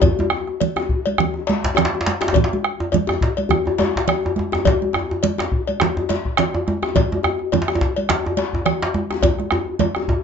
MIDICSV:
0, 0, Header, 1, 4, 480
1, 0, Start_track
1, 0, Tempo, 577478
1, 22, Time_signature, 4, 2, 24, 8
1, 4821, Tempo, 570885
1, 8552, End_track
2, 0, Start_track
2, 0, Title_t, "Bombo"
2, 12, Note_on_c, 9, 37, 34
2, 12, Note_on_c, 9, 43, 98
2, 96, Note_off_c, 9, 37, 0
2, 96, Note_off_c, 9, 43, 0
2, 250, Note_on_c, 9, 37, 85
2, 333, Note_off_c, 9, 37, 0
2, 394, Note_on_c, 9, 37, 32
2, 478, Note_off_c, 9, 37, 0
2, 505, Note_on_c, 9, 37, 28
2, 588, Note_off_c, 9, 37, 0
2, 637, Note_on_c, 9, 37, 72
2, 720, Note_off_c, 9, 37, 0
2, 741, Note_on_c, 9, 43, 81
2, 824, Note_off_c, 9, 43, 0
2, 983, Note_on_c, 9, 37, 84
2, 1066, Note_off_c, 9, 37, 0
2, 1362, Note_on_c, 9, 43, 65
2, 1445, Note_off_c, 9, 43, 0
2, 1472, Note_on_c, 9, 37, 84
2, 1555, Note_off_c, 9, 37, 0
2, 1613, Note_on_c, 9, 37, 29
2, 1696, Note_off_c, 9, 37, 0
2, 1844, Note_on_c, 9, 37, 64
2, 1927, Note_off_c, 9, 37, 0
2, 1955, Note_on_c, 9, 37, 28
2, 1955, Note_on_c, 9, 43, 95
2, 2038, Note_off_c, 9, 37, 0
2, 2038, Note_off_c, 9, 43, 0
2, 2198, Note_on_c, 9, 37, 78
2, 2281, Note_off_c, 9, 37, 0
2, 2330, Note_on_c, 9, 37, 28
2, 2413, Note_off_c, 9, 37, 0
2, 2569, Note_on_c, 9, 37, 66
2, 2652, Note_off_c, 9, 37, 0
2, 2669, Note_on_c, 9, 43, 80
2, 2753, Note_off_c, 9, 43, 0
2, 2916, Note_on_c, 9, 37, 82
2, 2999, Note_off_c, 9, 37, 0
2, 3290, Note_on_c, 9, 43, 61
2, 3373, Note_off_c, 9, 43, 0
2, 3399, Note_on_c, 9, 37, 84
2, 3482, Note_off_c, 9, 37, 0
2, 3535, Note_on_c, 9, 37, 29
2, 3618, Note_off_c, 9, 37, 0
2, 3641, Note_on_c, 9, 37, 28
2, 3724, Note_off_c, 9, 37, 0
2, 3767, Note_on_c, 9, 37, 70
2, 3850, Note_off_c, 9, 37, 0
2, 3870, Note_on_c, 9, 37, 28
2, 3870, Note_on_c, 9, 43, 94
2, 3953, Note_off_c, 9, 37, 0
2, 3953, Note_off_c, 9, 43, 0
2, 4109, Note_on_c, 9, 37, 81
2, 4193, Note_off_c, 9, 37, 0
2, 4250, Note_on_c, 9, 37, 29
2, 4333, Note_off_c, 9, 37, 0
2, 4483, Note_on_c, 9, 37, 71
2, 4566, Note_off_c, 9, 37, 0
2, 4585, Note_on_c, 9, 43, 83
2, 4668, Note_off_c, 9, 43, 0
2, 4820, Note_on_c, 9, 37, 86
2, 4904, Note_off_c, 9, 37, 0
2, 5201, Note_on_c, 9, 43, 69
2, 5286, Note_off_c, 9, 43, 0
2, 5303, Note_on_c, 9, 37, 98
2, 5387, Note_off_c, 9, 37, 0
2, 5437, Note_on_c, 9, 37, 30
2, 5521, Note_off_c, 9, 37, 0
2, 5551, Note_on_c, 9, 37, 30
2, 5635, Note_off_c, 9, 37, 0
2, 5686, Note_on_c, 9, 37, 68
2, 5771, Note_off_c, 9, 37, 0
2, 5793, Note_on_c, 9, 37, 29
2, 5793, Note_on_c, 9, 43, 99
2, 5877, Note_off_c, 9, 37, 0
2, 5877, Note_off_c, 9, 43, 0
2, 6035, Note_on_c, 9, 37, 80
2, 6119, Note_off_c, 9, 37, 0
2, 6160, Note_on_c, 9, 37, 30
2, 6244, Note_off_c, 9, 37, 0
2, 6403, Note_on_c, 9, 37, 71
2, 6487, Note_off_c, 9, 37, 0
2, 6512, Note_on_c, 9, 43, 78
2, 6596, Note_off_c, 9, 43, 0
2, 6746, Note_on_c, 9, 37, 84
2, 6830, Note_off_c, 9, 37, 0
2, 7117, Note_on_c, 9, 43, 66
2, 7201, Note_off_c, 9, 43, 0
2, 7227, Note_on_c, 9, 37, 91
2, 7311, Note_off_c, 9, 37, 0
2, 7368, Note_on_c, 9, 37, 29
2, 7452, Note_off_c, 9, 37, 0
2, 7461, Note_on_c, 9, 37, 26
2, 7545, Note_off_c, 9, 37, 0
2, 7600, Note_on_c, 9, 37, 61
2, 7684, Note_off_c, 9, 37, 0
2, 7700, Note_on_c, 9, 37, 28
2, 7700, Note_on_c, 9, 43, 95
2, 7784, Note_off_c, 9, 37, 0
2, 7784, Note_off_c, 9, 43, 0
2, 7835, Note_on_c, 9, 37, 28
2, 7920, Note_off_c, 9, 37, 0
2, 7937, Note_on_c, 9, 37, 86
2, 8021, Note_off_c, 9, 37, 0
2, 8308, Note_on_c, 9, 37, 68
2, 8392, Note_off_c, 9, 37, 0
2, 8420, Note_on_c, 9, 43, 73
2, 8504, Note_off_c, 9, 43, 0
2, 8552, End_track
3, 0, Start_track
3, 0, Title_t, "Djembe"
3, 17, Note_on_c, 9, 64, 78
3, 27, Note_off_c, 9, 64, 0
3, 27, Note_on_c, 9, 64, 71
3, 110, Note_off_c, 9, 64, 0
3, 165, Note_on_c, 9, 63, 77
3, 248, Note_off_c, 9, 63, 0
3, 256, Note_on_c, 9, 63, 71
3, 339, Note_off_c, 9, 63, 0
3, 634, Note_on_c, 9, 62, 60
3, 634, Note_on_c, 9, 63, 62
3, 717, Note_off_c, 9, 62, 0
3, 717, Note_off_c, 9, 63, 0
3, 983, Note_on_c, 9, 62, 24
3, 983, Note_on_c, 9, 64, 78
3, 1066, Note_off_c, 9, 62, 0
3, 1066, Note_off_c, 9, 64, 0
3, 1112, Note_on_c, 9, 62, 21
3, 1112, Note_on_c, 9, 63, 52
3, 1195, Note_off_c, 9, 62, 0
3, 1195, Note_off_c, 9, 63, 0
3, 1222, Note_on_c, 9, 62, 74
3, 1305, Note_off_c, 9, 62, 0
3, 1352, Note_on_c, 9, 62, 26
3, 1367, Note_off_c, 9, 62, 0
3, 1367, Note_on_c, 9, 62, 86
3, 1450, Note_off_c, 9, 62, 0
3, 1453, Note_on_c, 9, 62, 27
3, 1453, Note_on_c, 9, 63, 82
3, 1476, Note_off_c, 9, 62, 0
3, 1476, Note_on_c, 9, 62, 72
3, 1536, Note_off_c, 9, 63, 0
3, 1538, Note_off_c, 9, 62, 0
3, 1538, Note_on_c, 9, 62, 87
3, 1621, Note_off_c, 9, 62, 0
3, 1668, Note_on_c, 9, 62, 79
3, 1716, Note_off_c, 9, 62, 0
3, 1716, Note_on_c, 9, 62, 97
3, 1799, Note_off_c, 9, 62, 0
3, 1835, Note_on_c, 9, 62, 57
3, 1835, Note_on_c, 9, 63, 61
3, 1841, Note_off_c, 9, 62, 0
3, 1841, Note_on_c, 9, 62, 72
3, 1896, Note_off_c, 9, 62, 0
3, 1896, Note_on_c, 9, 62, 90
3, 1918, Note_off_c, 9, 63, 0
3, 1936, Note_on_c, 9, 64, 77
3, 1979, Note_off_c, 9, 62, 0
3, 2019, Note_off_c, 9, 64, 0
3, 2028, Note_on_c, 9, 62, 68
3, 2112, Note_off_c, 9, 62, 0
3, 2330, Note_on_c, 9, 63, 73
3, 2413, Note_off_c, 9, 63, 0
3, 2422, Note_on_c, 9, 62, 21
3, 2431, Note_on_c, 9, 63, 71
3, 2505, Note_off_c, 9, 62, 0
3, 2514, Note_off_c, 9, 63, 0
3, 2554, Note_on_c, 9, 62, 58
3, 2554, Note_on_c, 9, 63, 62
3, 2570, Note_off_c, 9, 63, 0
3, 2570, Note_on_c, 9, 63, 73
3, 2637, Note_off_c, 9, 62, 0
3, 2653, Note_off_c, 9, 63, 0
3, 2680, Note_on_c, 9, 62, 70
3, 2763, Note_off_c, 9, 62, 0
3, 2902, Note_on_c, 9, 64, 78
3, 2914, Note_on_c, 9, 63, 81
3, 2985, Note_off_c, 9, 64, 0
3, 2997, Note_off_c, 9, 63, 0
3, 3038, Note_on_c, 9, 63, 56
3, 3050, Note_off_c, 9, 63, 0
3, 3050, Note_on_c, 9, 63, 73
3, 3133, Note_off_c, 9, 63, 0
3, 3145, Note_on_c, 9, 62, 80
3, 3165, Note_on_c, 9, 63, 73
3, 3228, Note_off_c, 9, 62, 0
3, 3248, Note_off_c, 9, 63, 0
3, 3280, Note_on_c, 9, 62, 22
3, 3301, Note_off_c, 9, 62, 0
3, 3301, Note_on_c, 9, 62, 71
3, 3384, Note_off_c, 9, 62, 0
3, 3389, Note_on_c, 9, 63, 82
3, 3472, Note_off_c, 9, 63, 0
3, 3516, Note_on_c, 9, 62, 24
3, 3539, Note_on_c, 9, 63, 80
3, 3599, Note_off_c, 9, 62, 0
3, 3623, Note_off_c, 9, 63, 0
3, 3649, Note_on_c, 9, 63, 71
3, 3733, Note_off_c, 9, 63, 0
3, 3759, Note_on_c, 9, 62, 61
3, 3759, Note_on_c, 9, 63, 59
3, 3780, Note_off_c, 9, 63, 0
3, 3780, Note_on_c, 9, 63, 73
3, 3842, Note_off_c, 9, 62, 0
3, 3864, Note_off_c, 9, 63, 0
3, 3864, Note_on_c, 9, 64, 77
3, 3884, Note_on_c, 9, 62, 70
3, 3947, Note_off_c, 9, 64, 0
3, 3967, Note_off_c, 9, 62, 0
3, 4099, Note_on_c, 9, 63, 72
3, 4117, Note_off_c, 9, 63, 0
3, 4117, Note_on_c, 9, 63, 67
3, 4200, Note_off_c, 9, 63, 0
3, 4250, Note_on_c, 9, 63, 67
3, 4333, Note_off_c, 9, 63, 0
3, 4341, Note_on_c, 9, 62, 23
3, 4359, Note_on_c, 9, 63, 69
3, 4424, Note_off_c, 9, 62, 0
3, 4442, Note_off_c, 9, 63, 0
3, 4475, Note_on_c, 9, 62, 57
3, 4475, Note_on_c, 9, 63, 57
3, 4490, Note_off_c, 9, 62, 0
3, 4490, Note_on_c, 9, 62, 70
3, 4558, Note_off_c, 9, 63, 0
3, 4573, Note_off_c, 9, 62, 0
3, 4824, Note_on_c, 9, 64, 68
3, 4832, Note_on_c, 9, 62, 84
3, 4908, Note_off_c, 9, 64, 0
3, 4916, Note_off_c, 9, 62, 0
3, 4964, Note_on_c, 9, 62, 22
3, 4964, Note_on_c, 9, 63, 71
3, 5048, Note_off_c, 9, 62, 0
3, 5048, Note_off_c, 9, 63, 0
3, 5065, Note_on_c, 9, 62, 66
3, 5071, Note_on_c, 9, 63, 75
3, 5149, Note_off_c, 9, 62, 0
3, 5155, Note_off_c, 9, 63, 0
3, 5203, Note_on_c, 9, 62, 22
3, 5288, Note_off_c, 9, 62, 0
3, 5308, Note_on_c, 9, 62, 76
3, 5312, Note_on_c, 9, 63, 73
3, 5392, Note_off_c, 9, 62, 0
3, 5396, Note_off_c, 9, 63, 0
3, 5443, Note_on_c, 9, 62, 21
3, 5447, Note_on_c, 9, 63, 80
3, 5527, Note_off_c, 9, 62, 0
3, 5531, Note_off_c, 9, 63, 0
3, 5559, Note_on_c, 9, 63, 75
3, 5643, Note_off_c, 9, 63, 0
3, 5683, Note_on_c, 9, 62, 56
3, 5683, Note_on_c, 9, 63, 53
3, 5767, Note_off_c, 9, 62, 0
3, 5767, Note_off_c, 9, 63, 0
3, 5787, Note_on_c, 9, 64, 68
3, 5799, Note_on_c, 9, 62, 72
3, 5871, Note_off_c, 9, 64, 0
3, 5883, Note_off_c, 9, 62, 0
3, 5933, Note_on_c, 9, 63, 75
3, 6017, Note_off_c, 9, 63, 0
3, 6026, Note_on_c, 9, 63, 57
3, 6038, Note_off_c, 9, 63, 0
3, 6038, Note_on_c, 9, 63, 66
3, 6122, Note_off_c, 9, 63, 0
3, 6273, Note_on_c, 9, 63, 85
3, 6349, Note_on_c, 9, 62, 70
3, 6357, Note_off_c, 9, 63, 0
3, 6404, Note_off_c, 9, 62, 0
3, 6404, Note_on_c, 9, 62, 50
3, 6404, Note_on_c, 9, 63, 49
3, 6464, Note_off_c, 9, 63, 0
3, 6464, Note_on_c, 9, 63, 91
3, 6488, Note_off_c, 9, 62, 0
3, 6514, Note_on_c, 9, 62, 72
3, 6548, Note_off_c, 9, 63, 0
3, 6598, Note_off_c, 9, 62, 0
3, 6752, Note_on_c, 9, 64, 64
3, 6753, Note_on_c, 9, 62, 96
3, 6836, Note_off_c, 9, 64, 0
3, 6838, Note_off_c, 9, 62, 0
3, 6887, Note_on_c, 9, 62, 21
3, 6887, Note_on_c, 9, 63, 49
3, 6893, Note_off_c, 9, 63, 0
3, 6893, Note_on_c, 9, 63, 76
3, 6971, Note_off_c, 9, 62, 0
3, 6977, Note_off_c, 9, 63, 0
3, 6994, Note_on_c, 9, 62, 70
3, 7078, Note_off_c, 9, 62, 0
3, 7129, Note_on_c, 9, 62, 21
3, 7130, Note_on_c, 9, 63, 71
3, 7213, Note_off_c, 9, 62, 0
3, 7214, Note_off_c, 9, 63, 0
3, 7227, Note_on_c, 9, 63, 66
3, 7311, Note_off_c, 9, 63, 0
3, 7363, Note_on_c, 9, 62, 24
3, 7364, Note_off_c, 9, 62, 0
3, 7364, Note_on_c, 9, 62, 98
3, 7448, Note_off_c, 9, 62, 0
3, 7464, Note_on_c, 9, 63, 77
3, 7548, Note_off_c, 9, 63, 0
3, 7601, Note_on_c, 9, 62, 57
3, 7601, Note_on_c, 9, 63, 55
3, 7685, Note_off_c, 9, 62, 0
3, 7685, Note_off_c, 9, 63, 0
3, 7706, Note_on_c, 9, 63, 96
3, 7712, Note_on_c, 9, 62, 23
3, 7712, Note_on_c, 9, 64, 70
3, 7790, Note_off_c, 9, 63, 0
3, 7796, Note_off_c, 9, 62, 0
3, 7796, Note_off_c, 9, 64, 0
3, 7944, Note_on_c, 9, 62, 19
3, 7944, Note_on_c, 9, 63, 67
3, 7948, Note_off_c, 9, 63, 0
3, 7948, Note_on_c, 9, 63, 92
3, 8028, Note_off_c, 9, 62, 0
3, 8032, Note_off_c, 9, 63, 0
3, 8188, Note_on_c, 9, 63, 91
3, 8272, Note_off_c, 9, 63, 0
3, 8321, Note_on_c, 9, 62, 52
3, 8321, Note_on_c, 9, 63, 52
3, 8405, Note_off_c, 9, 62, 0
3, 8405, Note_off_c, 9, 63, 0
3, 8427, Note_on_c, 9, 62, 21
3, 8427, Note_on_c, 9, 63, 90
3, 8511, Note_off_c, 9, 62, 0
3, 8511, Note_off_c, 9, 63, 0
3, 8552, End_track
4, 0, Start_track
4, 0, Title_t, "Drums"
4, 13, Note_on_c, 9, 56, 60
4, 21, Note_on_c, 9, 64, 62
4, 96, Note_off_c, 9, 56, 0
4, 104, Note_off_c, 9, 64, 0
4, 156, Note_on_c, 9, 63, 49
4, 239, Note_off_c, 9, 63, 0
4, 268, Note_on_c, 9, 63, 22
4, 351, Note_off_c, 9, 63, 0
4, 394, Note_on_c, 9, 63, 19
4, 478, Note_off_c, 9, 63, 0
4, 503, Note_on_c, 9, 56, 51
4, 510, Note_on_c, 9, 63, 67
4, 510, Note_on_c, 9, 64, 69
4, 586, Note_off_c, 9, 56, 0
4, 593, Note_off_c, 9, 63, 0
4, 593, Note_off_c, 9, 64, 0
4, 747, Note_on_c, 9, 63, 24
4, 831, Note_off_c, 9, 63, 0
4, 877, Note_on_c, 9, 56, 54
4, 887, Note_on_c, 9, 63, 52
4, 961, Note_off_c, 9, 56, 0
4, 970, Note_off_c, 9, 63, 0
4, 998, Note_on_c, 9, 63, 22
4, 998, Note_on_c, 9, 64, 63
4, 1082, Note_off_c, 9, 63, 0
4, 1082, Note_off_c, 9, 64, 0
4, 1223, Note_on_c, 9, 56, 47
4, 1242, Note_on_c, 9, 63, 70
4, 1306, Note_off_c, 9, 56, 0
4, 1326, Note_off_c, 9, 63, 0
4, 1376, Note_on_c, 9, 63, 21
4, 1459, Note_off_c, 9, 63, 0
4, 1462, Note_on_c, 9, 56, 41
4, 1483, Note_on_c, 9, 63, 23
4, 1483, Note_on_c, 9, 64, 71
4, 1545, Note_off_c, 9, 56, 0
4, 1566, Note_off_c, 9, 63, 0
4, 1566, Note_off_c, 9, 64, 0
4, 1618, Note_on_c, 9, 63, 23
4, 1701, Note_off_c, 9, 63, 0
4, 1723, Note_on_c, 9, 63, 64
4, 1806, Note_off_c, 9, 63, 0
4, 1946, Note_on_c, 9, 56, 60
4, 1962, Note_on_c, 9, 63, 20
4, 1962, Note_on_c, 9, 64, 65
4, 2029, Note_off_c, 9, 56, 0
4, 2045, Note_off_c, 9, 63, 0
4, 2045, Note_off_c, 9, 64, 0
4, 2104, Note_on_c, 9, 63, 51
4, 2188, Note_off_c, 9, 63, 0
4, 2427, Note_on_c, 9, 56, 45
4, 2445, Note_on_c, 9, 63, 63
4, 2445, Note_on_c, 9, 64, 69
4, 2510, Note_off_c, 9, 56, 0
4, 2528, Note_off_c, 9, 63, 0
4, 2528, Note_off_c, 9, 64, 0
4, 2801, Note_on_c, 9, 56, 45
4, 2811, Note_on_c, 9, 63, 48
4, 2885, Note_off_c, 9, 56, 0
4, 2894, Note_off_c, 9, 63, 0
4, 2913, Note_on_c, 9, 63, 20
4, 2913, Note_on_c, 9, 64, 66
4, 2996, Note_off_c, 9, 63, 0
4, 2996, Note_off_c, 9, 64, 0
4, 3149, Note_on_c, 9, 63, 67
4, 3153, Note_on_c, 9, 56, 49
4, 3233, Note_off_c, 9, 63, 0
4, 3236, Note_off_c, 9, 56, 0
4, 3388, Note_on_c, 9, 64, 65
4, 3389, Note_on_c, 9, 56, 49
4, 3471, Note_off_c, 9, 64, 0
4, 3473, Note_off_c, 9, 56, 0
4, 3523, Note_on_c, 9, 63, 21
4, 3606, Note_off_c, 9, 63, 0
4, 3625, Note_on_c, 9, 63, 65
4, 3708, Note_off_c, 9, 63, 0
4, 3868, Note_on_c, 9, 56, 63
4, 3869, Note_on_c, 9, 63, 18
4, 3869, Note_on_c, 9, 64, 60
4, 3951, Note_off_c, 9, 56, 0
4, 3952, Note_off_c, 9, 63, 0
4, 3952, Note_off_c, 9, 64, 0
4, 4007, Note_on_c, 9, 63, 47
4, 4091, Note_off_c, 9, 63, 0
4, 4344, Note_on_c, 9, 56, 49
4, 4352, Note_on_c, 9, 63, 63
4, 4352, Note_on_c, 9, 64, 65
4, 4427, Note_off_c, 9, 56, 0
4, 4435, Note_off_c, 9, 63, 0
4, 4435, Note_off_c, 9, 64, 0
4, 4717, Note_on_c, 9, 56, 49
4, 4727, Note_on_c, 9, 63, 47
4, 4800, Note_off_c, 9, 56, 0
4, 4810, Note_off_c, 9, 63, 0
4, 4837, Note_on_c, 9, 63, 19
4, 4837, Note_on_c, 9, 64, 62
4, 4921, Note_off_c, 9, 63, 0
4, 4921, Note_off_c, 9, 64, 0
4, 5068, Note_on_c, 9, 56, 40
4, 5075, Note_on_c, 9, 63, 70
4, 5152, Note_off_c, 9, 56, 0
4, 5159, Note_off_c, 9, 63, 0
4, 5310, Note_on_c, 9, 56, 45
4, 5317, Note_on_c, 9, 64, 69
4, 5394, Note_off_c, 9, 56, 0
4, 5401, Note_off_c, 9, 64, 0
4, 5453, Note_on_c, 9, 63, 22
4, 5537, Note_off_c, 9, 63, 0
4, 5558, Note_on_c, 9, 63, 62
4, 5642, Note_off_c, 9, 63, 0
4, 5793, Note_on_c, 9, 56, 54
4, 5793, Note_on_c, 9, 63, 20
4, 5793, Note_on_c, 9, 64, 64
4, 5877, Note_off_c, 9, 56, 0
4, 5877, Note_off_c, 9, 63, 0
4, 5877, Note_off_c, 9, 64, 0
4, 5936, Note_on_c, 9, 63, 49
4, 6021, Note_off_c, 9, 63, 0
4, 6269, Note_on_c, 9, 56, 48
4, 6280, Note_on_c, 9, 63, 66
4, 6280, Note_on_c, 9, 64, 62
4, 6353, Note_off_c, 9, 56, 0
4, 6364, Note_off_c, 9, 63, 0
4, 6364, Note_off_c, 9, 64, 0
4, 6641, Note_on_c, 9, 56, 48
4, 6651, Note_on_c, 9, 63, 48
4, 6725, Note_off_c, 9, 56, 0
4, 6735, Note_off_c, 9, 63, 0
4, 6751, Note_on_c, 9, 63, 19
4, 6751, Note_on_c, 9, 64, 59
4, 6835, Note_off_c, 9, 63, 0
4, 6835, Note_off_c, 9, 64, 0
4, 6983, Note_on_c, 9, 56, 45
4, 6983, Note_on_c, 9, 63, 69
4, 7067, Note_off_c, 9, 56, 0
4, 7067, Note_off_c, 9, 63, 0
4, 7222, Note_on_c, 9, 56, 44
4, 7225, Note_on_c, 9, 64, 72
4, 7306, Note_off_c, 9, 56, 0
4, 7309, Note_off_c, 9, 64, 0
4, 7362, Note_on_c, 9, 63, 24
4, 7446, Note_off_c, 9, 63, 0
4, 7465, Note_on_c, 9, 63, 63
4, 7550, Note_off_c, 9, 63, 0
4, 7701, Note_on_c, 9, 56, 58
4, 7708, Note_on_c, 9, 64, 61
4, 7785, Note_off_c, 9, 56, 0
4, 7793, Note_off_c, 9, 64, 0
4, 7844, Note_on_c, 9, 63, 50
4, 7929, Note_off_c, 9, 63, 0
4, 7947, Note_on_c, 9, 63, 22
4, 8031, Note_off_c, 9, 63, 0
4, 8179, Note_on_c, 9, 63, 71
4, 8179, Note_on_c, 9, 64, 63
4, 8183, Note_on_c, 9, 56, 45
4, 8263, Note_off_c, 9, 63, 0
4, 8263, Note_off_c, 9, 64, 0
4, 8267, Note_off_c, 9, 56, 0
4, 8552, End_track
0, 0, End_of_file